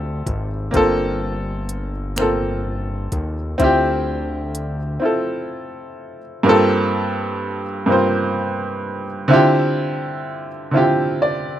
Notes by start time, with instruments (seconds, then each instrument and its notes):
Already playing: analog synth bass D2, grand piano C4 E4 F4 G4 A4
0.27 analog synth bass G#1, kick, closed hi-hat
0.71 analog synth bass G1, grand piano A#3 C4, kick, closed hi-hat
0.75 grand piano F4 A4
1.69 closed hi-hat
2.16 grand piano A#3 C4 F4, finger snap, closed hi-hat
2.21 grand piano A4
3.12 analog synth bass D#2, kick, closed hi-hat
3.58 analog synth bass D2, grand piano C4 E4 F4, kick, closed hi-hat
3.64 grand piano G4
4.55 closed hi-hat
5.00 grand piano C4 E4 F4
5.05 grand piano A4
6.43 grand piano G2 A#3 C4 F4
6.49 grand piano A4
7.86 grand piano G2 A#3 C4
7.90 grand piano F4 C5
9.28 grand piano D3 C4 E4 F4
9.33 grand piano G4
10.71 grand piano D3 C4 E4
10.76 grand piano F4 G4
11.22 grand piano D5